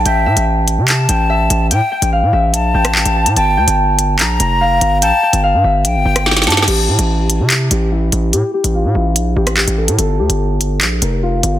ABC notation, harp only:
X:1
M:4/4
L:1/8
Q:1/4=145
K:Gdor
V:1 name="Harp"
g e4 g e2 | g g f e2 g g a | a g4 b f2 | g g f e2 g g a |
G E4 G E2 | G G F E2 G G A | A G4 B F2 |]